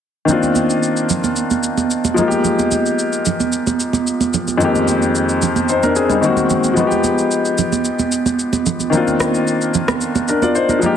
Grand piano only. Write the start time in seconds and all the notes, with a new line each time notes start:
0.25 D#3 A#3 C4
0.31 D4 F4
2.14 F3 G#3 A#3
2.20 D#4 F4
2.28 G4
4.57 F2 D#3 G#3
4.62 A#3 C4 G4
5.69 D#4 C5
5.83 D4 A#4
5.96 C4 G#4
6.10 G3 D#4
6.21 D#3 G#3 A#3 C4 F#4
6.74 F3 G#3 B3
6.79 D#4 F#4
6.87 G4
8.90 D#3 A#3 C4
8.95 D4 F4
10.29 D4 A#4
10.43 F4 D5
10.55 D#4 C5
10.69 D4 A#4
10.79 F3 G#3 A#3
10.84 D#4 G4